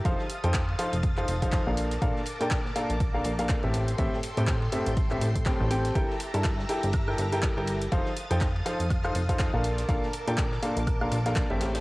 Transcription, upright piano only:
X:1
M:4/4
L:1/16
Q:"Swing 16ths" 1/4=122
K:Bb
V:1 name="Upright piano"
[F,EAcf] z2 [F,EAcg] z2 [F,EAcf] z2 [F,EAcf] z [F,EAcf]2 [B,,DABf]2 z | [B,,DABf] z2 [B,,DABg] z2 [B,,DABf] z2 [B,,DABf] z [B,,DABf]2 [A,,CGA=e]2 z | [A,,CGA=e] z2 [A,,CGAg] z2 [A,,CGAe] z2 [A,,CGAe] z2 [A,,CGAg]2 [CGAg]2 | [G,=EABg] z2 [G,EABa] z2 [G,EABg] z2 [G,EABg] z [G,EABg]2 [G,EABg]2 z |
[F,EAcf] z2 [F,EAcg] z2 [F,EAcf] z2 [F,EAcf] z [F,EAcf]2 [B,,DABf]2 z | [B,,DABf] z2 [B,,DABg] z2 [B,,DABf] z2 [B,,DABf] z [B,,DABf]2 [A,,CGA=e]2 z |]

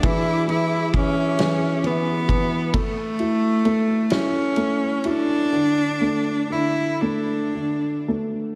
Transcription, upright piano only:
X:1
M:6/8
L:1/8
Q:3/8=44
K:Amix
V:1 name="Upright piano" clef=bass
E, E, E, E, E, E, | A, E A, E A, E | D, A, D, A, D, A, |]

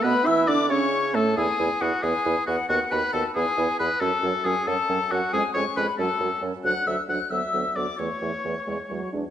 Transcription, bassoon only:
X:1
M:6/8
L:1/8
Q:3/8=91
K:Emix
V:1 name="Bassoon" clef=bass
B,, E, D, C,2 A,, | E,, E,, E,, E,, E,, E,, | ^D,, D,, D,, E,, E,, E,, | F,, F,, F,, F,, F,, F,, |
^E,, E,, E,, F,, F,, F,, | D,, D,, D,, D,, D,, D,, | E,, E,, E,, E,, E,, E,, |]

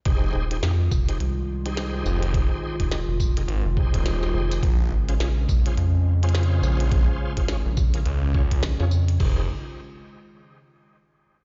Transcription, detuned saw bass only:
X:1
M:4/4
L:1/16
Q:"Swing 16ths" 1/4=105
K:Fm
V:1 name="Detuned saw bass" clef=bass
F,,,2 z12 F,,,2- | F,,, z6 z A,,, z2 E,,,3 z2 | B,,,2 z12 B,,,2- | B,,, z6 z D,,4 z4 |
F,,,2 z12 z2 |]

